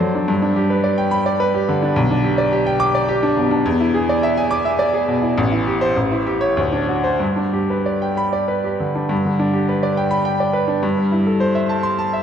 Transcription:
0.00 0.24 F#2 medium
0.00 0.23 F#3 medium
0.00 0.15 D4 soft
0.00 0.32 A4 medium
0.00 0.31 C5 medium
0.00 0.32 D5 medium
0.00 0.31 A5 medium
0.00 0.31 C6 medium
0.15 0.29 D4 soft
0.28 1.92 G2 medium
0.42 0.65 D4 medium
0.56 0.79 G4 medium
0.70 0.93 B4 medium
0.84 1.06 D5 medium
0.98 1.20 G5 medium
1.11 1.34 B5 medium
1.26 1.49 D5 medium
1.40 1.63 B4 medium
1.54 1.77 G4 medium
1.69 1.91 D3 medium
1.82 1.97 D4 medium
1.96 3.62 B1 medium
2.11 2.33 D4 medium
2.24 2.47 G4 medium
2.38 2.61 D5 medium
2.52 2.75 G4 medium
2.66 2.89 G5 medium
2.80 3.03 D6 loud
2.95 3.18 D5 medium
3.09 3.32 G4 medium
3.23 3.46 D4 medium
3.37 3.60 B2 medium
3.51 3.66 D4 medium
3.66 5.34 E2 medium
3.80 4.03 E4 medium
3.94 4.17 G#4 medium
4.09 4.32 D5 medium
4.23 4.46 E5 medium
4.37 4.60 G#5 medium
4.51 4.74 D6 medium
4.65 4.88 E5 medium
4.79 5.02 D5 medium
4.93 5.17 G#4 medium
5.08 5.32 B2 medium
5.22 5.37 E4 medium
5.38 5.95 A1 medium
5.51 5.75 E4 medium
5.67 5.91 G4 medium
5.81 5.96 C5 medium
5.96 6.55 A1 medium
6.11 6.36 E4 medium
6.26 6.51 G4 medium
6.41 6.57 C#5 medium
6.57 7.18 D2 medium
6.72 6.98 D4 medium
6.88 7.14 F#4 medium
7.04 7.20 C5 medium
7.20 9.07 G2 medium
7.36 7.63 D4 soft
7.53 7.79 G4 medium
7.70 7.95 B4 soft
7.86 8.11 D5 soft
8.02 8.27 G5 soft
8.17 8.42 B5 medium
8.33 8.58 D5 medium
8.48 8.74 B4 medium
8.64 8.90 G4 soft
8.80 9.05 D3 soft
8.95 9.11 D4 soft
9.09 10.79 G2 medium
9.25 9.48 D3 soft
9.39 9.63 D4 medium
9.53 9.77 G4 medium
9.69 9.92 B4 medium
9.83 10.06 D5 medium
9.97 10.20 G5 medium
10.11 10.34 B5 medium
10.25 10.48 G5 medium
10.40 10.63 D5 medium
10.53 10.77 B4 medium
10.68 10.83 D4 soft
10.83 12.23 G2 medium
10.97 11.20 G3 medium
11.12 11.35 E4 medium
11.26 11.49 A4 medium
11.40 11.64 C5 medium
11.55 11.78 E5 medium
11.69 11.93 A5 medium
11.83 12.07 C6 medium
11.99 12.21 A5 medium
12.13 12.23 E5 medium

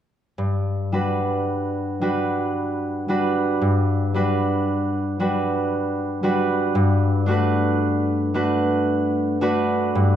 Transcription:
0.38 3.60 G2 soft
0.92 2.00 G3 soft
0.92 2.01 D4 soft
0.92 2.01 F#4 soft
0.92 2.01 B4 soft
2.01 3.07 G3 soft
2.01 3.08 D4 soft
2.01 3.08 F#4 soft
2.01 3.09 B4 soft
3.08 4.13 G3 soft
3.08 4.14 D4 soft
3.08 4.14 F#4 soft
3.08 4.15 B4 soft
3.61 6.74 G2 soft
4.14 5.19 G3 soft
4.14 5.18 D4 soft
4.14 5.19 F#4 soft
4.14 5.20 B4 soft
5.19 6.22 G3 soft
5.19 6.22 D4 soft
5.19 6.23 F#4 soft
5.19 6.23 B4 soft
6.23 10.13 G3 soft
6.23 7.26 D4 soft
6.23 7.27 F#4 soft
6.23 7.27 B4 soft
6.75 9.94 G2 soft
7.26 8.33 A3 soft
7.26 8.34 D4 soft
7.26 8.34 F#4 soft
7.31 8.34 B4 soft
8.34 9.40 A3 soft
8.34 9.40 D4 soft
8.34 9.41 F#4 soft
8.34 9.41 B4 soft
9.41 10.16 A3 soft
9.41 10.16 D4 soft
9.41 10.16 F#4 soft
9.41 10.16 B4 soft
9.95 10.16 G2 soft

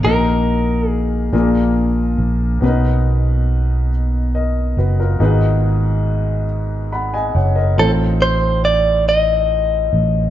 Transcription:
0.03 1.29 A#1 medium
0.03 1.29 A#2 soft
0.03 1.31 A#3 soft
0.03 1.33 D#4 soft
0.03 1.33 F#4 soft
0.03 1.32 A#4 soft
0.03 0.90 A#4 medium
0.03 1.33 D#5 medium
0.90 1.29 G#4 medium
1.32 2.15 A#1 medium
1.32 2.58 A#2 medium
1.32 2.62 A#3 medium
1.32 2.62 D4 medium
1.32 2.62 F4 medium
1.32 2.62 G#4 medium
1.32 2.62 A#4 medium
2.18 2.58 A#1 medium
2.61 4.73 B1 medium
2.61 3.87 B2 medium
2.61 5.15 B3 medium
2.61 2.68 C#4 soft
2.61 3.88 F#4 medium
2.61 3.89 A#4 medium
2.61 3.89 B4 medium
2.68 5.18 D#4 medium
4.35 4.75 A#4 soft
4.35 4.75 D#5 soft
4.77 5.17 F#1 medium
4.77 4.98 F#4 soft
4.77 4.98 B4 medium
5.00 5.40 F4 soft
5.00 5.40 A#4 soft
5.19 7.31 G#1 medium
5.19 6.45 G#2 medium
5.19 7.74 B3 medium
5.19 7.74 D#4 medium
5.19 7.75 F#4 medium
5.19 7.75 G#4 medium
5.19 6.90 B4 medium
6.92 7.13 F#5 soft
6.92 7.13 B5 medium
7.14 7.34 D#5 soft
7.14 7.34 G#5 medium
7.35 7.75 F#1 medium
7.35 7.56 C#5 soft
7.35 7.55 F#5 soft
7.55 7.97 A#4 soft
7.55 7.97 D#5 soft
7.76 9.89 A1 medium
7.76 9.03 A2 soft
7.76 10.30 C4 medium
7.76 10.30 D#4 soft
7.76 10.30 F4 soft
7.76 10.30 A4 soft
7.76 7.91 A4 medium
7.76 10.30 C5 medium
8.22 8.64 C5 medium
8.65 9.05 D5 medium
9.09 10.30 D#5 medium
9.93 10.30 A1 medium

